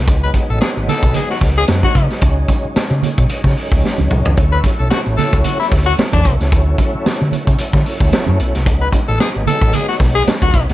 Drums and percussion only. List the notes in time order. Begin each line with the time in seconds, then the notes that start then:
0.07 kick, closed hi-hat, muted conga
0.34 kick, closed hi-hat, muted conga
0.61 snare, closed hi-hat, high conga
0.88 snare, closed hi-hat, low conga
1.03 kick, closed hi-hat
1.14 closed hi-hat, muted conga, low conga
1.30 snare
1.41 kick, snare, open hi-hat
1.68 snare, closed hi-hat, high conga
1.83 kick, high conga
1.95 kick, closed hi-hat
2.10 snare, closed hi-hat
2.21 kick, closed hi-hat, muted conga
2.48 kick, closed hi-hat, muted conga
2.76 snare, closed hi-hat, high conga
3.03 closed hi-hat, low conga
3.18 kick, closed hi-hat
3.29 closed hi-hat, muted conga
3.44 kick, snare
3.57 open hi-hat
3.72 kick
3.84 snare, high conga
3.98 high conga
4.11 mid tom
4.25 floor tom
4.37 kick, closed hi-hat, muted conga
4.64 kick, closed hi-hat, muted conga
4.91 snare, closed hi-hat, high conga
5.18 snare, closed hi-hat, low conga
5.33 kick, closed hi-hat
5.44 closed hi-hat, muted conga, low conga
5.61 snare
5.72 kick, snare, open hi-hat
5.99 snare, closed hi-hat, high conga
6.13 kick, high conga
6.25 kick, closed hi-hat
6.40 snare, closed hi-hat
6.52 kick, closed hi-hat, muted conga
6.78 kick, closed hi-hat, muted conga
7.06 snare, closed hi-hat, high conga
7.32 closed hi-hat, low conga
7.47 kick, closed hi-hat
7.58 closed hi-hat
7.73 kick, snare
7.86 open hi-hat
8.00 kick
8.13 snare, closed hi-hat, high conga
8.27 high conga
8.40 closed hi-hat
8.55 snare, closed hi-hat
8.66 kick, closed hi-hat, muted conga
8.92 kick, closed hi-hat, muted conga
9.20 snare, closed hi-hat, high conga
9.47 closed hi-hat, low conga
9.62 kick, closed hi-hat
9.73 closed hi-hat, muted conga, low conga
9.89 snare
10.00 kick, snare, open hi-hat
10.27 snare, closed hi-hat, high conga
10.42 kick, high conga
10.54 kick, closed hi-hat
10.69 snare, closed hi-hat